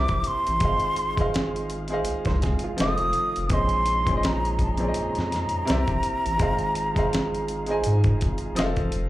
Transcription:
0.00 0.57 C3 medium
0.00 0.61 C3 medium
0.00 0.61 A#3 medium
0.00 0.57 C4 medium
0.00 0.61 E4 medium
0.00 0.58 A#4 medium
0.00 0.58 D5 medium
0.00 0.59 E5 medium
0.00 0.29 D6 loud
0.08 0.23 A#1 medium
0.08 kick medium
0.08 closed hi-hat soft
0.24 1.71 C6 loud
0.24 closed hi-hat medium
0.47 0.60 A1 medium
0.47 closed hi-hat soft
0.60 2.02 G#1 loud
0.60 3.48 D#3 medium
0.60 1.13 G#3 medium
0.60 2.76 G#3 medium
0.60 3.48 F4 medium
0.60 1.14 G#4 medium
0.60 1.14 C5 medium
0.60 1.15 D#5 medium
0.60 kick loud
0.60 closed hi-hat medium
0.65 1.15 F5 medium
0.80 closed hi-hat soft
0.96 closed hi-hat medium
1.17 1.84 G#3 medium
1.17 1.85 G#4 medium
1.17 1.85 C5 medium
1.17 1.86 D#5 medium
1.17 kick medium
1.17 closed hi-hat medium
1.21 1.86 F5 loud
1.34 snare loud
1.34 closed hi-hat medium
1.56 closed hi-hat soft
1.70 closed hi-hat medium
1.88 2.78 G#3 medium
1.88 2.77 G#4 medium
1.88 2.79 C5 medium
1.88 closed hi-hat soft
1.93 2.79 D#5 medium
1.93 2.80 F5 loud
2.05 2.16 C2 soft
2.05 closed hi-hat medium
2.25 2.56 C2 medium
2.25 2.42 D#4 medium
2.25 2.41 C5 medium
2.25 kick medium
2.25 snare soft
2.25 closed hi-hat soft
2.42 2.62 C4 medium
2.42 2.62 G#4 medium
2.42 kick medium
2.42 snare soft
2.42 closed hi-hat medium
2.59 closed hi-hat soft
2.64 2.98 G#3 medium
2.64 2.97 F4 medium
2.77 2.96 F1 loud
2.77 3.45 F3 medium
2.77 3.50 A3 medium
2.77 3.46 C4 medium
2.77 2.86 G#4 medium
2.77 3.47 D#5 medium
2.77 3.55 D#6 loud
2.77 snare loud
2.77 closed hi-hat medium
2.82 3.48 F5 medium
2.86 3.50 A4 medium
2.98 closed hi-hat soft
3.02 3.13 F1 medium
3.13 closed hi-hat medium
3.36 3.49 F1 medium
3.36 closed hi-hat soft
3.49 4.92 A#1 loud
3.49 4.02 A#2 medium
3.49 5.66 C#3 medium
3.49 4.02 F3 medium
3.49 5.66 G#3 medium
3.49 4.03 C4 medium
3.49 4.03 C#4 medium
3.49 5.66 D#4 medium
3.49 4.04 G#4 medium
3.49 5.66 C5 medium
3.49 kick loud
3.49 closed hi-hat medium
3.53 4.04 D#5 medium
3.53 4.27 C6 loud
3.69 closed hi-hat soft
3.86 closed hi-hat medium
4.05 4.73 A#2 medium
4.05 4.74 F3 medium
4.05 4.74 C4 medium
4.05 4.74 C#4 medium
4.05 4.75 G#4 medium
4.05 kick medium
4.05 closed hi-hat medium
4.10 4.14 D5 medium
4.17 4.79 D#5 medium
4.23 4.60 A#5 medium
4.23 snare loud
4.23 closed hi-hat medium
4.45 closed hi-hat soft
4.59 8.54 A#5 medium
4.59 kick medium
4.59 closed hi-hat medium
4.77 5.66 A#2 medium
4.77 5.67 F3 medium
4.77 5.65 C4 medium
4.77 5.68 C#4 medium
4.77 5.68 G#4 medium
4.77 closed hi-hat soft
4.82 4.87 D5 medium
4.88 5.72 D#5 medium
4.94 5.05 F2 soft
4.94 closed hi-hat medium
5.15 5.46 F2 medium
5.15 snare soft
5.15 closed hi-hat soft
5.32 snare soft
5.32 closed hi-hat medium
5.49 closed hi-hat soft
5.65 6.34 C3 loud
5.65 6.39 C3 medium
5.65 6.39 A#3 medium
5.65 6.35 C4 medium
5.65 6.39 E4 medium
5.65 6.36 A#4 medium
5.65 6.36 D5 medium
5.65 closed hi-hat medium
5.70 5.85 C2 loud
5.70 6.37 E5 loud
5.70 snare loud
5.87 6.01 A#1 medium
5.87 kick medium
5.87 closed hi-hat soft
6.03 closed hi-hat medium
6.26 6.38 A1 medium
6.26 closed hi-hat medium
6.38 7.81 G#1 loud
6.38 9.09 D#3 medium
6.38 6.91 G#3 medium
6.38 8.55 G#3 medium
6.38 9.09 F4 medium
6.38 6.92 G#4 medium
6.38 6.92 C5 medium
6.38 6.93 D#5 medium
6.38 kick loud
6.38 closed hi-hat medium
6.43 6.94 F5 medium
6.59 closed hi-hat soft
6.75 closed hi-hat medium
6.94 7.62 G#3 medium
6.94 7.63 G#4 medium
6.94 7.63 C5 medium
6.94 7.64 D#5 medium
6.94 kick medium
6.94 closed hi-hat medium
6.99 7.64 F5 medium
7.13 snare loud
7.13 closed hi-hat medium
7.35 closed hi-hat soft
7.48 closed hi-hat medium
7.66 8.56 G#3 medium
7.66 8.56 G#4 medium
7.66 8.57 C5 medium
7.66 8.57 D#5 medium
7.66 closed hi-hat soft
7.72 8.58 G#5 medium
7.84 8.15 G#2 loud
7.84 closed hi-hat medium
8.04 kick medium
8.04 closed hi-hat soft
8.21 8.52 G#1 medium
8.21 kick medium
8.21 closed hi-hat medium
8.38 closed hi-hat soft
8.55 8.74 F1 loud
8.55 9.09 F3 medium
8.55 9.09 A3 medium
8.55 9.09 C4 medium
8.55 8.64 G#4 medium
8.55 9.09 D#5 medium
8.55 9.09 D#6 loud
8.55 snare loud
8.55 closed hi-hat medium
8.60 9.09 F5 loud
8.64 9.09 A4 medium
8.76 8.90 A1 loud
8.76 kick medium
8.76 closed hi-hat soft
8.92 9.09 F1 loud
8.92 closed hi-hat medium

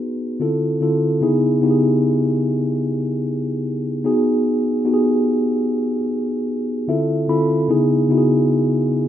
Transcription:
0.00 0.42 B3 medium
0.00 0.43 D#4 medium
0.00 0.42 F#4 medium
0.00 0.42 B4 medium
0.40 0.73 D3 medium
0.40 0.74 C4 medium
0.40 0.74 E4 medium
0.40 0.74 F4 medium
0.40 0.74 A4 medium
0.81 1.10 D3 medium
0.81 1.10 C4 medium
0.81 1.11 E4 medium
0.81 1.11 F4 medium
0.81 1.11 A4 medium
1.21 1.51 C#3 medium
1.21 1.51 B3 medium
1.21 1.51 D#4 medium
1.21 1.51 E4 medium
1.21 1.52 G#4 medium
1.62 2.75 C#3 medium
1.62 2.75 B3 medium
1.62 2.76 D#4 medium
1.62 2.76 E4 medium
1.62 1.70 G4 medium
1.70 2.80 G#4 medium
4.04 4.71 B3 medium
4.04 4.71 D#4 medium
4.04 4.71 F#4 medium
4.04 4.72 G#4 medium
4.85 5.99 B3 medium
4.85 5.99 D#4 medium
4.85 5.99 F#4 medium
4.85 4.94 G4 medium
4.94 6.03 G#4 medium
6.88 7.21 D3 medium
6.88 7.21 C4 medium
6.88 7.22 E4 medium
6.88 7.22 F4 medium
6.88 7.22 A4 medium
6.88 7.26 E5 medium
7.28 7.58 D3 medium
7.28 7.58 C4 medium
7.28 7.58 E4 medium
7.28 7.59 F4 medium
7.28 7.59 A4 medium
7.28 7.67 B5 medium
7.68 7.98 C#3 medium
7.68 7.98 B3 medium
7.68 7.99 D#4 medium
7.68 7.99 E4 medium
7.68 7.99 G#4 medium
8.09 9.08 C#3 medium
8.09 9.08 B3 medium
8.09 9.08 D#4 medium
8.09 9.08 E4 medium
8.09 8.18 F#4 medium
8.18 9.08 G#4 medium

